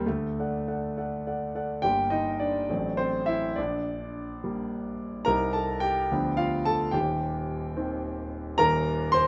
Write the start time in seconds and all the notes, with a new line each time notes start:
0.06 D2 A3
0.39 A4 D5 F#5
0.68 A4 D5 F#5
0.97 A4 D5 F#5
1.27 A4 D5 F#5
1.55 A4 D5 F#5
1.82 G1 G3 A#3 D4 G4 G5
2.10 D#4 D#5
2.40 D4 D5
2.69 A1 F#3 A3 C4
2.97 C4 C5
3.26 E4 E5
3.56 A#1 D4 D5
4.44 G3 A#3
5.25 C2 G3 C4 D#4 A#4 A#5
5.53 A4 A5
5.80 G4 G5
6.11 D2 F3 B3 D4
6.37 F4 F5
6.65 A4 A5
6.91 D#1 D#2 G4 G5
7.76 D#3 C4
8.58 D#1 D#2 A#4 A#5
9.12 C5 C6